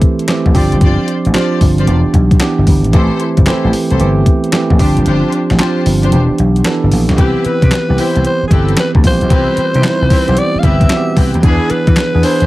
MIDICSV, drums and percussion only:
0, 0, Header, 1, 2, 480
1, 0, Start_track
1, 0, Tempo, 530973
1, 733, Time_signature, 4, 2, 24, 8
1, 11268, End_track
2, 0, Start_track
2, 0, Title_t, "Drums"
2, 14, Note_on_c, 9, 36, 90
2, 15, Note_on_c, 9, 42, 73
2, 105, Note_off_c, 9, 36, 0
2, 105, Note_off_c, 9, 42, 0
2, 174, Note_on_c, 9, 42, 51
2, 256, Note_off_c, 9, 42, 0
2, 256, Note_on_c, 9, 38, 126
2, 256, Note_on_c, 9, 42, 76
2, 260, Note_on_c, 9, 39, 92
2, 346, Note_off_c, 9, 38, 0
2, 347, Note_off_c, 9, 42, 0
2, 351, Note_off_c, 9, 39, 0
2, 413, Note_on_c, 9, 36, 103
2, 494, Note_on_c, 9, 46, 75
2, 495, Note_off_c, 9, 36, 0
2, 495, Note_on_c, 9, 36, 91
2, 585, Note_off_c, 9, 36, 0
2, 585, Note_off_c, 9, 46, 0
2, 651, Note_on_c, 9, 42, 49
2, 733, Note_off_c, 9, 42, 0
2, 733, Note_on_c, 9, 42, 80
2, 734, Note_on_c, 9, 36, 125
2, 823, Note_off_c, 9, 42, 0
2, 824, Note_off_c, 9, 36, 0
2, 975, Note_on_c, 9, 42, 71
2, 1065, Note_off_c, 9, 42, 0
2, 1130, Note_on_c, 9, 42, 53
2, 1213, Note_off_c, 9, 42, 0
2, 1213, Note_on_c, 9, 42, 69
2, 1215, Note_on_c, 9, 38, 104
2, 1219, Note_on_c, 9, 39, 75
2, 1303, Note_off_c, 9, 42, 0
2, 1305, Note_off_c, 9, 38, 0
2, 1309, Note_off_c, 9, 39, 0
2, 1455, Note_on_c, 9, 36, 97
2, 1455, Note_on_c, 9, 46, 74
2, 1546, Note_off_c, 9, 36, 0
2, 1546, Note_off_c, 9, 46, 0
2, 1611, Note_on_c, 9, 42, 51
2, 1694, Note_off_c, 9, 42, 0
2, 1694, Note_on_c, 9, 42, 82
2, 1784, Note_off_c, 9, 42, 0
2, 1932, Note_on_c, 9, 36, 92
2, 1933, Note_on_c, 9, 42, 72
2, 2022, Note_off_c, 9, 36, 0
2, 2024, Note_off_c, 9, 42, 0
2, 2090, Note_on_c, 9, 36, 96
2, 2091, Note_on_c, 9, 42, 52
2, 2171, Note_off_c, 9, 42, 0
2, 2171, Note_on_c, 9, 38, 125
2, 2171, Note_on_c, 9, 42, 80
2, 2175, Note_on_c, 9, 39, 99
2, 2180, Note_off_c, 9, 36, 0
2, 2261, Note_off_c, 9, 38, 0
2, 2261, Note_off_c, 9, 42, 0
2, 2266, Note_off_c, 9, 39, 0
2, 2412, Note_on_c, 9, 46, 79
2, 2413, Note_on_c, 9, 36, 86
2, 2503, Note_off_c, 9, 46, 0
2, 2504, Note_off_c, 9, 36, 0
2, 2571, Note_on_c, 9, 42, 54
2, 2650, Note_off_c, 9, 42, 0
2, 2650, Note_on_c, 9, 42, 81
2, 2652, Note_on_c, 9, 36, 125
2, 2741, Note_off_c, 9, 42, 0
2, 2742, Note_off_c, 9, 36, 0
2, 2889, Note_on_c, 9, 42, 72
2, 2980, Note_off_c, 9, 42, 0
2, 3047, Note_on_c, 9, 42, 55
2, 3050, Note_on_c, 9, 36, 84
2, 3128, Note_off_c, 9, 42, 0
2, 3128, Note_on_c, 9, 42, 74
2, 3130, Note_on_c, 9, 38, 102
2, 3135, Note_on_c, 9, 39, 86
2, 3140, Note_off_c, 9, 36, 0
2, 3219, Note_off_c, 9, 42, 0
2, 3221, Note_off_c, 9, 38, 0
2, 3225, Note_off_c, 9, 39, 0
2, 3373, Note_on_c, 9, 46, 78
2, 3464, Note_off_c, 9, 46, 0
2, 3530, Note_on_c, 9, 42, 50
2, 3613, Note_off_c, 9, 42, 0
2, 3613, Note_on_c, 9, 42, 77
2, 3703, Note_off_c, 9, 42, 0
2, 3852, Note_on_c, 9, 36, 88
2, 3853, Note_on_c, 9, 42, 72
2, 3942, Note_off_c, 9, 36, 0
2, 3943, Note_off_c, 9, 42, 0
2, 4012, Note_on_c, 9, 42, 50
2, 4093, Note_off_c, 9, 42, 0
2, 4093, Note_on_c, 9, 38, 121
2, 4093, Note_on_c, 9, 42, 78
2, 4097, Note_on_c, 9, 39, 91
2, 4183, Note_off_c, 9, 38, 0
2, 4183, Note_off_c, 9, 42, 0
2, 4188, Note_off_c, 9, 39, 0
2, 4252, Note_on_c, 9, 36, 97
2, 4334, Note_off_c, 9, 36, 0
2, 4334, Note_on_c, 9, 36, 86
2, 4334, Note_on_c, 9, 46, 78
2, 4424, Note_off_c, 9, 36, 0
2, 4424, Note_off_c, 9, 46, 0
2, 4491, Note_on_c, 9, 42, 54
2, 4572, Note_off_c, 9, 42, 0
2, 4572, Note_on_c, 9, 42, 85
2, 4662, Note_off_c, 9, 42, 0
2, 4813, Note_on_c, 9, 42, 69
2, 4903, Note_off_c, 9, 42, 0
2, 4972, Note_on_c, 9, 42, 52
2, 4973, Note_on_c, 9, 38, 60
2, 5053, Note_off_c, 9, 42, 0
2, 5053, Note_on_c, 9, 42, 80
2, 5055, Note_off_c, 9, 38, 0
2, 5055, Note_on_c, 9, 38, 102
2, 5059, Note_on_c, 9, 39, 82
2, 5143, Note_off_c, 9, 42, 0
2, 5145, Note_off_c, 9, 38, 0
2, 5149, Note_off_c, 9, 39, 0
2, 5297, Note_on_c, 9, 46, 79
2, 5387, Note_off_c, 9, 46, 0
2, 5453, Note_on_c, 9, 42, 50
2, 5533, Note_off_c, 9, 42, 0
2, 5533, Note_on_c, 9, 42, 81
2, 5624, Note_off_c, 9, 42, 0
2, 5772, Note_on_c, 9, 42, 74
2, 5862, Note_off_c, 9, 42, 0
2, 5931, Note_on_c, 9, 42, 50
2, 6011, Note_on_c, 9, 38, 116
2, 6012, Note_off_c, 9, 42, 0
2, 6012, Note_on_c, 9, 42, 82
2, 6016, Note_on_c, 9, 39, 93
2, 6102, Note_off_c, 9, 38, 0
2, 6102, Note_off_c, 9, 42, 0
2, 6106, Note_off_c, 9, 39, 0
2, 6252, Note_on_c, 9, 46, 80
2, 6342, Note_off_c, 9, 46, 0
2, 6409, Note_on_c, 9, 38, 65
2, 6410, Note_on_c, 9, 42, 54
2, 6492, Note_off_c, 9, 42, 0
2, 6492, Note_on_c, 9, 36, 119
2, 6492, Note_on_c, 9, 42, 79
2, 6499, Note_off_c, 9, 38, 0
2, 6582, Note_off_c, 9, 36, 0
2, 6583, Note_off_c, 9, 42, 0
2, 6731, Note_on_c, 9, 42, 67
2, 6821, Note_off_c, 9, 42, 0
2, 6890, Note_on_c, 9, 36, 79
2, 6891, Note_on_c, 9, 42, 53
2, 6971, Note_off_c, 9, 42, 0
2, 6971, Note_on_c, 9, 42, 69
2, 6973, Note_on_c, 9, 38, 98
2, 6977, Note_on_c, 9, 39, 88
2, 6981, Note_off_c, 9, 36, 0
2, 7061, Note_off_c, 9, 42, 0
2, 7063, Note_off_c, 9, 38, 0
2, 7068, Note_off_c, 9, 39, 0
2, 7215, Note_on_c, 9, 46, 72
2, 7306, Note_off_c, 9, 46, 0
2, 7373, Note_on_c, 9, 42, 50
2, 7454, Note_off_c, 9, 42, 0
2, 7454, Note_on_c, 9, 42, 78
2, 7545, Note_off_c, 9, 42, 0
2, 7691, Note_on_c, 9, 36, 94
2, 7694, Note_on_c, 9, 42, 78
2, 7781, Note_off_c, 9, 36, 0
2, 7784, Note_off_c, 9, 42, 0
2, 7852, Note_on_c, 9, 42, 49
2, 7929, Note_on_c, 9, 38, 126
2, 7930, Note_off_c, 9, 42, 0
2, 7930, Note_on_c, 9, 42, 81
2, 7934, Note_on_c, 9, 39, 98
2, 8020, Note_off_c, 9, 38, 0
2, 8020, Note_off_c, 9, 42, 0
2, 8024, Note_off_c, 9, 39, 0
2, 8089, Note_on_c, 9, 36, 94
2, 8171, Note_on_c, 9, 46, 83
2, 8172, Note_off_c, 9, 36, 0
2, 8172, Note_on_c, 9, 36, 89
2, 8261, Note_off_c, 9, 46, 0
2, 8262, Note_off_c, 9, 36, 0
2, 8328, Note_on_c, 9, 42, 53
2, 8410, Note_off_c, 9, 42, 0
2, 8410, Note_on_c, 9, 36, 116
2, 8410, Note_on_c, 9, 42, 86
2, 8500, Note_off_c, 9, 42, 0
2, 8501, Note_off_c, 9, 36, 0
2, 8650, Note_on_c, 9, 42, 74
2, 8741, Note_off_c, 9, 42, 0
2, 8808, Note_on_c, 9, 42, 55
2, 8891, Note_off_c, 9, 42, 0
2, 8891, Note_on_c, 9, 42, 74
2, 8893, Note_on_c, 9, 38, 110
2, 8898, Note_on_c, 9, 39, 75
2, 8982, Note_off_c, 9, 42, 0
2, 8984, Note_off_c, 9, 38, 0
2, 8988, Note_off_c, 9, 39, 0
2, 9133, Note_on_c, 9, 46, 77
2, 9134, Note_on_c, 9, 36, 94
2, 9224, Note_off_c, 9, 46, 0
2, 9225, Note_off_c, 9, 36, 0
2, 9292, Note_on_c, 9, 42, 51
2, 9371, Note_off_c, 9, 42, 0
2, 9371, Note_on_c, 9, 42, 86
2, 9462, Note_off_c, 9, 42, 0
2, 9611, Note_on_c, 9, 36, 88
2, 9611, Note_on_c, 9, 42, 73
2, 9701, Note_off_c, 9, 36, 0
2, 9701, Note_off_c, 9, 42, 0
2, 9770, Note_on_c, 9, 36, 92
2, 9772, Note_on_c, 9, 42, 51
2, 9852, Note_off_c, 9, 42, 0
2, 9852, Note_on_c, 9, 38, 122
2, 9852, Note_on_c, 9, 42, 78
2, 9857, Note_on_c, 9, 39, 88
2, 9860, Note_off_c, 9, 36, 0
2, 9942, Note_off_c, 9, 38, 0
2, 9943, Note_off_c, 9, 42, 0
2, 9947, Note_off_c, 9, 39, 0
2, 10094, Note_on_c, 9, 46, 81
2, 10095, Note_on_c, 9, 36, 94
2, 10185, Note_off_c, 9, 36, 0
2, 10185, Note_off_c, 9, 46, 0
2, 10253, Note_on_c, 9, 42, 51
2, 10334, Note_off_c, 9, 42, 0
2, 10334, Note_on_c, 9, 36, 126
2, 10334, Note_on_c, 9, 42, 88
2, 10424, Note_off_c, 9, 36, 0
2, 10424, Note_off_c, 9, 42, 0
2, 10574, Note_on_c, 9, 42, 72
2, 10664, Note_off_c, 9, 42, 0
2, 10731, Note_on_c, 9, 42, 51
2, 10732, Note_on_c, 9, 36, 83
2, 10813, Note_off_c, 9, 42, 0
2, 10813, Note_on_c, 9, 42, 72
2, 10815, Note_on_c, 9, 38, 105
2, 10820, Note_on_c, 9, 39, 81
2, 10823, Note_off_c, 9, 36, 0
2, 10904, Note_off_c, 9, 42, 0
2, 10906, Note_off_c, 9, 38, 0
2, 10910, Note_off_c, 9, 39, 0
2, 11057, Note_on_c, 9, 46, 79
2, 11148, Note_off_c, 9, 46, 0
2, 11214, Note_on_c, 9, 42, 51
2, 11268, Note_off_c, 9, 42, 0
2, 11268, End_track
0, 0, End_of_file